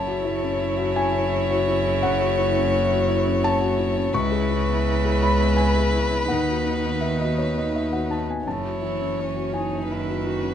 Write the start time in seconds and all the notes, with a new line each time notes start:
Already playing: F#1 F#2 C#3 E4 C#5 A5
0.07 F#4
0.25 E4
0.43 C#4
0.78 F#4
0.96 E4 G#5
1.14 C#4
1.50 F#4
1.67 E4
1.85 C#4
2.03 F#2 F#5
2.21 F#4
2.39 E4
2.56 C#4
2.92 F#4
3.09 E4
3.26 C#4
3.44 A5
3.61 F#4
3.79 E4
3.97 C#4
4.14 C#2 C#3 E4 B4 C#6
4.32 G#4
4.50 E4
4.69 B3
5.05 G#4
5.22 E4 B5
5.40 B3
5.57 G#5
5.76 G#4
5.93 E4
6.12 B3
6.28 D#2 D#3 D#4 F#5
6.48 F#4
6.66 D#4
6.84 B3
7.01 E5
7.20 F#4 D#5
7.38 D#4 C#5
7.57 B3 D#5
7.75 E5
7.92 F#4 F#5
8.10 D#4 A5
8.28 B3 G#5
8.46 F#1 F#2 C#3 E4 C#5 A5
8.64 F#4
8.80 E3 E4
9.00 C#4
9.20 C#4
9.36 F#4
9.53 D#4 E4 G#5
9.71 C#4
9.87 D#3 E4 B4
10.07 F#4
10.24 E4 F#4
10.42 C#4